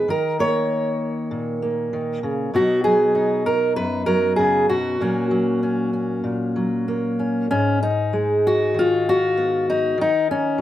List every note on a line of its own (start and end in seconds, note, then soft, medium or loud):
0.00 0.43 D#4 soft
0.08 1.92 D#3 medium
0.08 0.40 A#4 medium
0.39 1.61 A#3 medium
0.39 2.54 C#5 medium
1.31 2.50 A#2 medium
1.62 2.50 A#3 medium
1.93 2.23 D#3 medium
2.23 2.53 C#3 medium
2.54 3.76 B2 medium
2.54 2.84 F#3 soft
2.54 4.97 B3 soft
2.54 3.14 D#4 soft
2.54 2.84 F#4 medium
2.84 4.06 F#3 medium
2.84 3.46 G#4 medium
3.15 4.96 D#4 soft
3.46 3.76 A#4 medium
3.76 5.00 F#2 medium
3.76 4.06 B4 loud
4.06 4.96 F#3 medium
4.06 4.36 A#4 medium
4.36 4.70 C#3 medium
4.36 4.68 G#4 medium
4.69 5.01 B2 medium
4.69 7.51 F#4 medium
5.00 6.22 A#2 medium
5.00 5.30 F#3 soft
5.00 6.87 A#3 soft
5.00 5.62 C#4 soft
5.31 6.55 F#3 medium
5.63 5.92 C#4 soft
5.93 7.18 C#4 soft
6.24 7.46 A#2 medium
6.56 7.47 F#3 medium
6.88 7.47 A#3 soft
7.19 7.49 C#4 soft
7.51 9.94 G#2 medium
7.51 7.82 C#4 medium
7.83 8.75 D#4 medium
8.13 9.94 G#3 medium
8.47 9.07 F#4 medium
8.74 9.94 D#3 medium
8.79 9.69 F4 medium
9.09 10.00 F#4 loud
9.37 9.95 B3 soft
9.70 9.99 D#4 medium
9.98 10.61 D#3 medium
9.98 10.30 D#4 medium
10.31 10.61 C#4 medium
10.58 10.61 F#3 medium